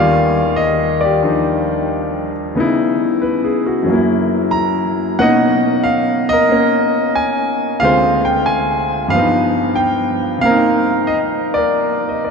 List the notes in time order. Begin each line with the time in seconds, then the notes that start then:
Already playing: D#2 D#3 G3 F4 D5 F5
0.56 D#5
1.01 D5
1.05 G4
1.23 F3 D4 D#4
2.55 C#3 B3 D#4
2.60 E4
3.22 B4
3.44 G#4
3.66 F#4
3.83 F#2 F#3
3.90 A#3 E4
4.51 A#5
5.19 B2 A#3 C#4 D#4 D#5 F#5
5.84 F5
6.29 A#4 D#5
6.49 A#3 C#4
7.15 G#5
7.80 D2 C3 G#3 F4 F5
7.85 C5
8.25 G5
8.46 G#5
9.08 G2 F3 F5
9.15 B3 D#4 B4
9.76 G5
10.39 C3 A#3 F5
10.45 C4 A#4
10.50 D#4
11.07 D#5
11.54 A#4 D5
12.09 D#5
12.24 D5